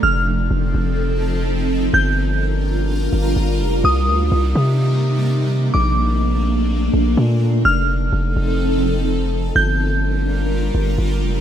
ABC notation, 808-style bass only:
X:1
M:4/4
L:1/8
Q:1/4=126
K:Fmix
V:1 name="808-style bass" clef=bass
F,,,2 F,,, F,,,4- F,,, | G,,,4- G,,, G,,, G,,, F,,, | C,, D,, C,, C,4- C, | B,,,4- B,,, B,,, B,,2 |
F,,,2 F,,, F,,,4- F,,, | G,,,4- G,,, G,,, G,,, F,,, |]